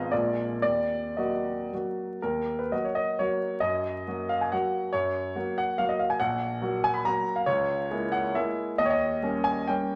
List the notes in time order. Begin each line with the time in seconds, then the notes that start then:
Already playing: G#1 G#3 B3 F4 D#5 F5
0.12 A#1 G#3 A#3 F4 D5
0.62 D#2 D5
1.17 F#3 A#3 F#4 D#5
1.73 F#3 A#3 F#4
2.22 D#2 A#4
2.59 B4
2.72 F#3 A#3 F#4 D#5
2.84 C#5
2.95 D#5
3.19 F#3 A#3 F#4 C#5
3.60 F#2 D#5
4.07 F#3 A#3 F#4
4.29 F5
4.41 G#5
4.52 F#3 A#3 F#4 F#5
4.93 F#2 C#5
5.36 F#3 A#3 F#4
5.58 F#5
5.78 F#3 A#3 F#4 F5
5.89 D#5
5.99 F5
6.10 G#5
6.20 A#1 F#5
6.62 F#3 A#3 F#4
6.84 G#5
6.94 B5
7.05 F#3 A#3 F#4 A#5
7.36 F5
7.46 C#2 C#5
7.91 G#3 A#3 E4
8.12 F#5
8.35 G#3 A#3 E4 E5
8.78 D#2 D#5
8.86 C#5
8.90 D#5
9.22 G3 A#3 C#4
9.44 G#5
9.67 G3 A#3 C#4 G5